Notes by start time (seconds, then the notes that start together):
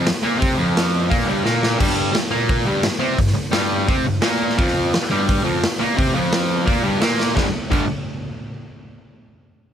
0.07 snare, open hi-hat
0.23 A#2 A#3
0.39 C3 C4, kick, open hi-hat
0.56 F2 F3
0.77 snare, open hi-hat
1.08 A#2 A#3, kick, open hi-hat
1.24 G2 G3
1.43 A#2 A#3, snare
1.63 snare
1.78 G2 G3, kick, crash
1.89 snare
2.13 muted distorted electric guitar stroke, snare, open hi-hat
2.31 A#2 A#3
2.49 kick, open hi-hat
2.66 G2 G3
2.83 snare, open hi-hat
2.99 C3 C4
3.18 G2, kick, open hi-hat
3.27 snare
3.34 muted distorted electric guitar stroke
3.51 G2 G3, snare, open hi-hat
3.87 C3 C4, kick, open hi-hat
4.06 G2
4.22 A#2 A#3, snare, open hi-hat
4.50 snare
4.57 F2 F3, kick, open hi-hat
4.68 snare
4.94 muted distorted electric guitar stroke, snare, open hi-hat
5.10 G2 G3
5.29 kick, open hi-hat
5.43 F2 F3
5.64 snare, open hi-hat
5.79 A#2 A#3
5.96 C3 C4, kick, open hi-hat
6.13 F2 F3
6.33 snare, open hi-hat
6.66 A#2 A#3, kick, open hi-hat
6.83 G2 G3
6.99 A#2 A#3, snare, open hi-hat
7.20 snare
7.35 G2 D3 G3, kick, snare
7.70 G2 D3 G3, kick, crash